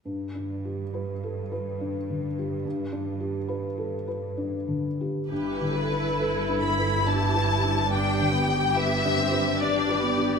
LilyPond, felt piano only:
\new Staff \with { instrumentName = "Felt piano" } { \time 3/4 \key g \major \tempo 4 = 70 \tuplet 3/2 { g,8 d'8 g'8 b'8 a'8 b'8 d'8 d8 g'8 } | \tuplet 3/2 { g,8 d'8 g'8 b'8 a'8 b'8 d'8 d8 g'8 } | \tuplet 3/2 { g,8 d8 d'8 b'8 d'8 b'8 d'8 b'8 d'8 } | \tuplet 3/2 { g,8 d8 d'8 b'8 d'8 b'8 d'8 b'8 d'8 } | }